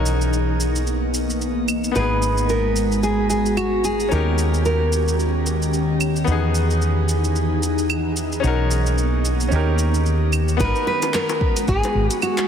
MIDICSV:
0, 0, Header, 1, 6, 480
1, 0, Start_track
1, 0, Key_signature, 5, "minor"
1, 0, Tempo, 540541
1, 1733, Time_signature, 4, 2, 24, 8
1, 11080, End_track
2, 0, Start_track
2, 0, Title_t, "Nylon-string guitar"
2, 0, Program_c, 0, 24
2, 1737, Note_on_c, 0, 71, 100
2, 2214, Note_off_c, 0, 71, 0
2, 2217, Note_on_c, 0, 70, 84
2, 2689, Note_off_c, 0, 70, 0
2, 2693, Note_on_c, 0, 68, 85
2, 2917, Note_off_c, 0, 68, 0
2, 2928, Note_on_c, 0, 68, 77
2, 3154, Note_off_c, 0, 68, 0
2, 3170, Note_on_c, 0, 66, 78
2, 3395, Note_off_c, 0, 66, 0
2, 3414, Note_on_c, 0, 68, 77
2, 3651, Note_off_c, 0, 68, 0
2, 3655, Note_on_c, 0, 70, 88
2, 4101, Note_off_c, 0, 70, 0
2, 4133, Note_on_c, 0, 70, 72
2, 4818, Note_off_c, 0, 70, 0
2, 9415, Note_on_c, 0, 71, 114
2, 9643, Note_off_c, 0, 71, 0
2, 9653, Note_on_c, 0, 71, 104
2, 9893, Note_off_c, 0, 71, 0
2, 9896, Note_on_c, 0, 70, 101
2, 10373, Note_off_c, 0, 70, 0
2, 10377, Note_on_c, 0, 68, 94
2, 10854, Note_off_c, 0, 68, 0
2, 10858, Note_on_c, 0, 66, 95
2, 11080, Note_off_c, 0, 66, 0
2, 11080, End_track
3, 0, Start_track
3, 0, Title_t, "Grand piano"
3, 0, Program_c, 1, 0
3, 0, Control_c, 1, 64, 127
3, 0, Note_on_c, 1, 61, 72
3, 0, Note_on_c, 1, 63, 65
3, 0, Note_on_c, 1, 66, 63
3, 0, Note_on_c, 1, 70, 84
3, 1694, Note_off_c, 1, 61, 0
3, 1700, Note_on_c, 1, 59, 69
3, 1706, Note_off_c, 1, 63, 0
3, 1715, Note_off_c, 1, 66, 0
3, 1722, Note_on_c, 1, 63, 62
3, 1727, Note_off_c, 1, 70, 0
3, 1743, Control_c, 1, 64, 0
3, 1745, Note_on_c, 1, 66, 66
3, 1767, Note_on_c, 1, 68, 76
3, 1894, Control_c, 1, 64, 127
3, 3613, Note_off_c, 1, 59, 0
3, 3623, Note_off_c, 1, 63, 0
3, 3627, Note_on_c, 1, 61, 72
3, 3635, Note_off_c, 1, 66, 0
3, 3646, Note_off_c, 1, 68, 0
3, 3647, Note_on_c, 1, 63, 64
3, 3666, Control_c, 1, 64, 0
3, 3668, Note_on_c, 1, 67, 67
3, 3689, Note_on_c, 1, 70, 78
3, 3811, Control_c, 1, 64, 127
3, 5536, Note_off_c, 1, 61, 0
3, 5544, Note_on_c, 1, 59, 79
3, 5546, Note_off_c, 1, 63, 0
3, 5557, Note_off_c, 1, 67, 0
3, 5567, Note_off_c, 1, 70, 0
3, 5568, Note_on_c, 1, 63, 71
3, 5585, Note_on_c, 1, 66, 65
3, 5586, Control_c, 1, 64, 0
3, 5609, Note_on_c, 1, 68, 85
3, 5723, Control_c, 1, 64, 127
3, 7455, Note_off_c, 1, 59, 0
3, 7458, Note_on_c, 1, 61, 76
3, 7465, Note_off_c, 1, 63, 0
3, 7475, Note_off_c, 1, 66, 0
3, 7478, Note_on_c, 1, 63, 70
3, 7487, Note_off_c, 1, 68, 0
3, 7500, Note_on_c, 1, 66, 68
3, 7506, Control_c, 1, 64, 0
3, 7522, Note_on_c, 1, 70, 87
3, 7649, Control_c, 1, 64, 127
3, 8408, Note_off_c, 1, 61, 0
3, 8421, Note_on_c, 1, 61, 65
3, 8422, Note_off_c, 1, 63, 0
3, 8432, Note_off_c, 1, 66, 0
3, 8441, Note_on_c, 1, 63, 57
3, 8444, Note_off_c, 1, 70, 0
3, 8462, Note_on_c, 1, 67, 62
3, 8465, Control_c, 1, 64, 0
3, 8485, Note_on_c, 1, 70, 73
3, 8624, Control_c, 1, 64, 127
3, 9373, Note_off_c, 1, 61, 0
3, 9383, Note_off_c, 1, 63, 0
3, 9384, Note_on_c, 1, 59, 85
3, 9394, Note_off_c, 1, 67, 0
3, 9405, Note_off_c, 1, 70, 0
3, 9405, Note_on_c, 1, 63, 75
3, 9425, Control_c, 1, 64, 0
3, 9428, Note_on_c, 1, 66, 79
3, 9450, Note_on_c, 1, 70, 95
3, 9568, Control_c, 1, 64, 127
3, 11055, Note_off_c, 1, 59, 0
3, 11065, Note_off_c, 1, 63, 0
3, 11076, Note_off_c, 1, 66, 0
3, 11080, Note_off_c, 1, 70, 0
3, 11080, End_track
4, 0, Start_track
4, 0, Title_t, "Ambient pad"
4, 0, Program_c, 2, 92
4, 0, Note_on_c, 2, 58, 80
4, 0, Note_on_c, 2, 59, 73
4, 0, Note_on_c, 2, 63, 67
4, 1701, Note_off_c, 2, 63, 0
4, 1717, Note_off_c, 2, 58, 0
4, 1717, Note_off_c, 2, 59, 0
4, 1735, Note_on_c, 2, 56, 78
4, 1736, Note_on_c, 2, 59, 82
4, 1738, Note_on_c, 2, 66, 67
4, 3635, Note_off_c, 2, 56, 0
4, 3635, Note_off_c, 2, 59, 0
4, 3637, Note_off_c, 2, 66, 0
4, 3658, Note_on_c, 2, 51, 75
4, 3658, Note_on_c, 2, 61, 72
4, 3659, Note_on_c, 2, 67, 84
4, 5557, Note_off_c, 2, 51, 0
4, 5557, Note_off_c, 2, 61, 0
4, 5557, Note_off_c, 2, 67, 0
4, 5572, Note_on_c, 2, 63, 69
4, 5573, Note_on_c, 2, 52, 78
4, 5574, Note_on_c, 2, 68, 87
4, 7474, Note_off_c, 2, 52, 0
4, 7474, Note_off_c, 2, 63, 0
4, 7474, Note_off_c, 2, 68, 0
4, 9413, Note_on_c, 2, 59, 87
4, 9414, Note_on_c, 2, 56, 81
4, 9415, Note_on_c, 2, 66, 74
4, 11080, Note_off_c, 2, 56, 0
4, 11080, Note_off_c, 2, 59, 0
4, 11080, Note_off_c, 2, 66, 0
4, 11080, End_track
5, 0, Start_track
5, 0, Title_t, "Fretless electric bass"
5, 0, Program_c, 3, 35
5, 0, Note_on_c, 3, 35, 76
5, 1712, Note_off_c, 3, 35, 0
5, 1737, Note_on_c, 3, 32, 70
5, 3635, Note_off_c, 3, 32, 0
5, 3657, Note_on_c, 3, 39, 76
5, 5555, Note_off_c, 3, 39, 0
5, 5570, Note_on_c, 3, 40, 76
5, 7472, Note_off_c, 3, 40, 0
5, 7492, Note_on_c, 3, 35, 78
5, 8433, Note_off_c, 3, 35, 0
5, 8452, Note_on_c, 3, 39, 81
5, 9392, Note_off_c, 3, 39, 0
5, 9412, Note_on_c, 3, 32, 96
5, 9514, Note_off_c, 3, 32, 0
5, 10373, Note_on_c, 3, 32, 87
5, 10474, Note_off_c, 3, 32, 0
5, 10611, Note_on_c, 3, 32, 85
5, 10713, Note_off_c, 3, 32, 0
5, 11080, End_track
6, 0, Start_track
6, 0, Title_t, "Drums"
6, 52, Note_on_c, 9, 82, 71
6, 141, Note_off_c, 9, 82, 0
6, 192, Note_on_c, 9, 82, 39
6, 281, Note_off_c, 9, 82, 0
6, 297, Note_on_c, 9, 82, 29
6, 385, Note_off_c, 9, 82, 0
6, 536, Note_on_c, 9, 82, 68
6, 625, Note_off_c, 9, 82, 0
6, 672, Note_on_c, 9, 82, 44
6, 761, Note_off_c, 9, 82, 0
6, 773, Note_on_c, 9, 82, 28
6, 862, Note_off_c, 9, 82, 0
6, 1014, Note_on_c, 9, 82, 64
6, 1103, Note_off_c, 9, 82, 0
6, 1155, Note_on_c, 9, 82, 40
6, 1244, Note_off_c, 9, 82, 0
6, 1256, Note_on_c, 9, 82, 29
6, 1345, Note_off_c, 9, 82, 0
6, 1495, Note_on_c, 9, 75, 49
6, 1495, Note_on_c, 9, 82, 67
6, 1584, Note_off_c, 9, 75, 0
6, 1584, Note_off_c, 9, 82, 0
6, 1635, Note_on_c, 9, 82, 40
6, 1724, Note_off_c, 9, 82, 0
6, 1736, Note_on_c, 9, 82, 30
6, 1825, Note_off_c, 9, 82, 0
6, 1975, Note_on_c, 9, 82, 68
6, 2064, Note_off_c, 9, 82, 0
6, 2111, Note_on_c, 9, 82, 42
6, 2199, Note_off_c, 9, 82, 0
6, 2213, Note_on_c, 9, 82, 28
6, 2302, Note_off_c, 9, 82, 0
6, 2452, Note_on_c, 9, 82, 68
6, 2541, Note_off_c, 9, 82, 0
6, 2592, Note_on_c, 9, 82, 41
6, 2681, Note_off_c, 9, 82, 0
6, 2693, Note_on_c, 9, 82, 28
6, 2782, Note_off_c, 9, 82, 0
6, 2933, Note_on_c, 9, 82, 68
6, 3021, Note_off_c, 9, 82, 0
6, 3073, Note_on_c, 9, 82, 39
6, 3161, Note_off_c, 9, 82, 0
6, 3173, Note_on_c, 9, 75, 69
6, 3174, Note_on_c, 9, 82, 29
6, 3262, Note_off_c, 9, 75, 0
6, 3262, Note_off_c, 9, 82, 0
6, 3414, Note_on_c, 9, 82, 67
6, 3502, Note_off_c, 9, 82, 0
6, 3553, Note_on_c, 9, 82, 39
6, 3642, Note_off_c, 9, 82, 0
6, 3655, Note_on_c, 9, 82, 28
6, 3744, Note_off_c, 9, 82, 0
6, 3893, Note_on_c, 9, 82, 68
6, 3982, Note_off_c, 9, 82, 0
6, 4032, Note_on_c, 9, 82, 39
6, 4121, Note_off_c, 9, 82, 0
6, 4133, Note_on_c, 9, 82, 29
6, 4222, Note_off_c, 9, 82, 0
6, 4374, Note_on_c, 9, 82, 65
6, 4463, Note_off_c, 9, 82, 0
6, 4514, Note_on_c, 9, 82, 42
6, 4603, Note_off_c, 9, 82, 0
6, 4614, Note_on_c, 9, 82, 26
6, 4703, Note_off_c, 9, 82, 0
6, 4852, Note_on_c, 9, 82, 68
6, 4941, Note_off_c, 9, 82, 0
6, 4994, Note_on_c, 9, 82, 36
6, 5083, Note_off_c, 9, 82, 0
6, 5093, Note_on_c, 9, 82, 29
6, 5182, Note_off_c, 9, 82, 0
6, 5333, Note_on_c, 9, 75, 53
6, 5334, Note_on_c, 9, 82, 68
6, 5422, Note_off_c, 9, 75, 0
6, 5423, Note_off_c, 9, 82, 0
6, 5473, Note_on_c, 9, 82, 36
6, 5562, Note_off_c, 9, 82, 0
6, 5572, Note_on_c, 9, 82, 29
6, 5661, Note_off_c, 9, 82, 0
6, 5815, Note_on_c, 9, 82, 63
6, 5904, Note_off_c, 9, 82, 0
6, 5954, Note_on_c, 9, 82, 37
6, 6043, Note_off_c, 9, 82, 0
6, 6055, Note_on_c, 9, 82, 27
6, 6144, Note_off_c, 9, 82, 0
6, 6294, Note_on_c, 9, 82, 69
6, 6383, Note_off_c, 9, 82, 0
6, 6433, Note_on_c, 9, 82, 40
6, 6522, Note_off_c, 9, 82, 0
6, 6534, Note_on_c, 9, 82, 25
6, 6623, Note_off_c, 9, 82, 0
6, 6775, Note_on_c, 9, 82, 65
6, 6864, Note_off_c, 9, 82, 0
6, 6914, Note_on_c, 9, 82, 39
6, 7002, Note_off_c, 9, 82, 0
6, 7013, Note_on_c, 9, 75, 71
6, 7014, Note_on_c, 9, 82, 27
6, 7102, Note_off_c, 9, 75, 0
6, 7102, Note_off_c, 9, 82, 0
6, 7252, Note_on_c, 9, 82, 66
6, 7341, Note_off_c, 9, 82, 0
6, 7391, Note_on_c, 9, 82, 39
6, 7480, Note_off_c, 9, 82, 0
6, 7495, Note_on_c, 9, 82, 30
6, 7584, Note_off_c, 9, 82, 0
6, 7734, Note_on_c, 9, 82, 68
6, 7823, Note_off_c, 9, 82, 0
6, 7872, Note_on_c, 9, 82, 41
6, 7961, Note_off_c, 9, 82, 0
6, 7975, Note_on_c, 9, 82, 29
6, 8064, Note_off_c, 9, 82, 0
6, 8214, Note_on_c, 9, 82, 67
6, 8303, Note_off_c, 9, 82, 0
6, 8352, Note_on_c, 9, 82, 44
6, 8441, Note_off_c, 9, 82, 0
6, 8452, Note_on_c, 9, 82, 28
6, 8541, Note_off_c, 9, 82, 0
6, 8690, Note_on_c, 9, 82, 62
6, 8779, Note_off_c, 9, 82, 0
6, 8830, Note_on_c, 9, 82, 38
6, 8919, Note_off_c, 9, 82, 0
6, 8932, Note_on_c, 9, 82, 29
6, 9021, Note_off_c, 9, 82, 0
6, 9171, Note_on_c, 9, 75, 58
6, 9171, Note_on_c, 9, 82, 65
6, 9260, Note_off_c, 9, 75, 0
6, 9260, Note_off_c, 9, 82, 0
6, 9309, Note_on_c, 9, 82, 41
6, 9398, Note_off_c, 9, 82, 0
6, 9412, Note_on_c, 9, 36, 113
6, 9413, Note_on_c, 9, 82, 59
6, 9501, Note_off_c, 9, 36, 0
6, 9502, Note_off_c, 9, 82, 0
6, 9551, Note_on_c, 9, 82, 35
6, 9640, Note_off_c, 9, 82, 0
6, 9789, Note_on_c, 9, 42, 60
6, 9789, Note_on_c, 9, 82, 73
6, 9792, Note_on_c, 9, 60, 65
6, 9878, Note_off_c, 9, 42, 0
6, 9878, Note_off_c, 9, 82, 0
6, 9880, Note_off_c, 9, 60, 0
6, 9890, Note_on_c, 9, 39, 81
6, 9891, Note_on_c, 9, 82, 58
6, 9979, Note_off_c, 9, 39, 0
6, 9979, Note_off_c, 9, 82, 0
6, 10029, Note_on_c, 9, 82, 32
6, 10030, Note_on_c, 9, 60, 62
6, 10118, Note_off_c, 9, 60, 0
6, 10118, Note_off_c, 9, 82, 0
6, 10132, Note_on_c, 9, 36, 104
6, 10221, Note_off_c, 9, 36, 0
6, 10270, Note_on_c, 9, 42, 66
6, 10271, Note_on_c, 9, 82, 77
6, 10359, Note_off_c, 9, 42, 0
6, 10359, Note_off_c, 9, 82, 0
6, 10371, Note_on_c, 9, 82, 53
6, 10372, Note_on_c, 9, 36, 113
6, 10460, Note_off_c, 9, 82, 0
6, 10461, Note_off_c, 9, 36, 0
6, 10509, Note_on_c, 9, 42, 44
6, 10510, Note_on_c, 9, 82, 32
6, 10521, Note_on_c, 9, 60, 57
6, 10598, Note_off_c, 9, 42, 0
6, 10599, Note_off_c, 9, 82, 0
6, 10610, Note_off_c, 9, 60, 0
6, 10750, Note_on_c, 9, 42, 57
6, 10751, Note_on_c, 9, 82, 68
6, 10839, Note_off_c, 9, 42, 0
6, 10839, Note_off_c, 9, 82, 0
6, 10854, Note_on_c, 9, 75, 79
6, 10854, Note_on_c, 9, 82, 52
6, 10943, Note_off_c, 9, 75, 0
6, 10943, Note_off_c, 9, 82, 0
6, 10992, Note_on_c, 9, 39, 75
6, 10992, Note_on_c, 9, 42, 46
6, 10992, Note_on_c, 9, 82, 33
6, 11080, Note_off_c, 9, 39, 0
6, 11080, Note_off_c, 9, 42, 0
6, 11080, Note_off_c, 9, 82, 0
6, 11080, End_track
0, 0, End_of_file